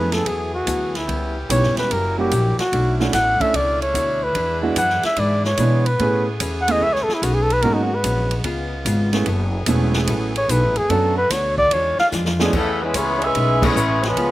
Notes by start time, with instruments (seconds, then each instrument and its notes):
Already playing: upright bass F2, saxophone section E3 A3 B3 G#4, hollow-body jazz guitar F#3 B3 E4 A4, grand piano A3 B3 C#4 E4 G#4, muted trumpet B4
0.12 muted trumpet A4, snare, ride
0.26 upright bass E2, hollow-body jazz guitar F#3 B3 E4 A4, muted trumpet G#4, kick, ride
0.54 muted trumpet F#4
0.66 upright bass D2, hollow-body jazz guitar F#3 B3 E4 A4, kick, hi-hat pedal, ride
0.95 muted trumpet E4, snare, ride
1.05 upright bass C#2, hollow-body jazz guitar C#3 G3 B3, saxophone section C#4 G4, kick, ride
1.10 hollow-body jazz guitar E4
1.49 upright bass B1, hollow-body jazz guitar C#3 G3 B3 E4, grand piano G3 B3 C#4 E4 G4, muted trumpet C#5, kick, hi-hat pedal, ride
1.61 upright bass G1, snare
1.75 upright bass E1, muted trumpet B4, snare, ride
1.86 upright bass F#1, saxophone section F#3 G3 A#3
1.90 hollow-body jazz guitar F#3 A#3 E4 G4, muted trumpet A#4, kick, ride
2.18 grand piano G3 A#3 C#4 E4 F#4, muted trumpet G4
2.31 upright bass A#1, hollow-body jazz guitar F#3 A#3 E4 G4, kick, hi-hat pedal, ride
2.58 muted trumpet F#4, muted upright bass stroke, snare, ride
2.70 upright bass B1, hollow-body jazz guitar B2 A3, saxophone section A3 C#4 D4 E4, kick, ride
2.75 hollow-body jazz guitar D4 E4
3.00 grand piano A3 C#4 D4 E4 F#4, snare
3.12 upright bass A1, hollow-body jazz guitar B2 A3 D4 E4, muted trumpet F#5, kick, snare, hi-hat pedal, ride
3.40 grand piano A3 C#4 D4 E4 A4, muted trumpet E5, kick, ride
3.54 upright bass C#2, hollow-body jazz guitar B2 A3 D4 E4, muted trumpet D5, kick, ride
3.82 muted trumpet C#5, ride
3.93 upright bass D2, hollow-body jazz guitar B2 A3 D4 E4, kick, hi-hat pedal, ride
4.23 muted trumpet B4
4.34 upright bass E2, hollow-body jazz guitar E3 D4 G#4 B4, saxophone section G#3 B3, kick, ride
4.62 grand piano G#3 B3 D4 E4 F#4
4.76 upright bass F#2, hollow-body jazz guitar E3 D4 G#4 B4, muted trumpet F#5, kick, hi-hat pedal, ride
4.90 snare
5.03 muted trumpet E5, muted upright bass stroke, snare, ride
5.16 upright bass G#2, hollow-body jazz guitar E3 D4 G#4 B4, muted trumpet D5, kick, ride
5.44 muted trumpet C#5, snare
5.57 upright bass B2, hollow-body jazz guitar E3 D4 G#4 B4, grand piano G#3 B3 D4 E4 G#4, kick, hi-hat pedal, ride
5.86 muted trumpet B4, ride
5.99 upright bass A2, saxophone section C#3 A3 G#4, hollow-body jazz guitar A3 C#4 G#4 B4, grand piano A3 B3 C#4 E4 G#4, kick, ride
6.40 upright bass E2, hollow-body jazz guitar A3 C#4 G#4 B4, kick, hi-hat pedal, ride
6.61 muted trumpet F#5
6.68 grand piano A3 B3 C#4 E4 G#4, muted trumpet D#5, ride
6.81 upright bass C#2, hollow-body jazz guitar A3 C#4 G#4 B4, muted trumpet E5, kick
6.93 muted trumpet C#5, snare
7.03 muted trumpet A4
7.08 muted upright bass stroke, snare
7.14 muted trumpet E4
7.22 upright bass B1, hollow-body jazz guitar A3 C#4 G#4 B4, muted trumpet F#4, kick, hi-hat pedal, ride
7.34 muted trumpet G#4
7.42 muted trumpet A4
7.50 muted trumpet B4, ride
7.62 upright bass G#1, hollow-body jazz guitar G#2 F#3 B3 C#4, saxophone section G#3 B3 F#4, grand piano A#3 B3 C#4 D#4 F#4, muted trumpet A#4, kick, ride
7.74 muted trumpet D#4
7.84 muted trumpet F#4
7.95 muted trumpet B4
8.03 upright bass A#1, hollow-body jazz guitar G#2 F#3 B3 C#4, kick, hi-hat pedal, ride
8.31 ride
8.43 upright bass C#2, hollow-body jazz guitar C#3 B3 F4 G#4, saxophone section G#3 F4, kick, ride
8.85 upright bass G#1, hollow-body jazz guitar C#3 B3 F4 G#4, kick, hi-hat pedal, ride
9.12 grand piano A3 B3 C#4 E4 G#4, snare, ride
9.26 upright bass F#1, saxophone section E3 A3 G#4, hollow-body jazz guitar F#3 B3 E4 A4, kick, ride
9.66 upright bass E1, hollow-body jazz guitar F#3 B3 E4 A4, grand piano A3 B3 C#4 E4 G#4, kick, hi-hat pedal, ride
9.94 snare
10.07 upright bass A1, hollow-body jazz guitar F#3 B3 E4 A4, kick, ride
10.36 muted trumpet C#5, ride
10.48 upright bass B1, hollow-body jazz guitar F#3 B3 E4 A4, muted trumpet B4, kick, hi-hat pedal, ride
10.62 upright bass A1
10.76 upright bass F#1, muted trumpet G#4, ride
10.89 upright bass F#2, hollow-body jazz guitar B2 A3 D4 F#4, saxophone section D3 F#4, grand piano F#3 B3 C#4 D4 A4, muted trumpet A4, kick, ride
11.17 muted trumpet B4
11.30 upright bass D2, hollow-body jazz guitar B2 A3 D4 F#4, muted trumpet C#5, kick, snare, hi-hat pedal, ride
11.58 muted trumpet D5, kick
11.71 upright bass E2, hollow-body jazz guitar E3 G#3 D4 F4, saxophone section E3 G#3 D4 F4, muted trumpet C#5, kick, ride
11.98 muted trumpet F5, muted upright bass stroke, snare
12.12 upright bass F2, hollow-body jazz guitar E3 G#3 D4 F4, snare, hi-hat pedal
12.25 snare
12.39 trombone section B2 D3 G#3, saxophone section F3 B3 D4 G#4, grand piano A3 B3 C#4 E4 G#4, snare
12.53 upright bass E2, trombone section C#3 E3 A3, saxophone section E3 B3 C#4 A4, hollow-body jazz guitar A3 C#4 G#4 B4, kick, crash
12.82 trombone section E3 G#3 B3, saxophone section G#3 C#4 E4 B4
12.94 upright bass C#2, trombone section E3 G#3 C#4, hollow-body jazz guitar A3 C#4 G#4 B4, saxophone section B3 E4 G#4 C#5, kick, hi-hat pedal, ride
13.22 trombone section G#3 C#4 E4, saxophone section C#4 G#4 B4 E5, ride
13.35 upright bass B1, hollow-body jazz guitar A3 C#4 G#4 B4, kick, ride
13.62 trombone section E3 G#3 C#4, grand piano A3 B3 C#4 E4 G#4, saxophone section B3 E4 G#4 C#5, kick, crash
13.74 upright bass A1, hollow-body jazz guitar A3 C#4 G#4 B4, hi-hat pedal
14.03 trombone section F3 G#3 B3, saxophone section G#3 C#4 F4 B4, snare, ride
14.16 upright bass C#2, hollow-body jazz guitar C#3 A3 B3 F4, kick, ride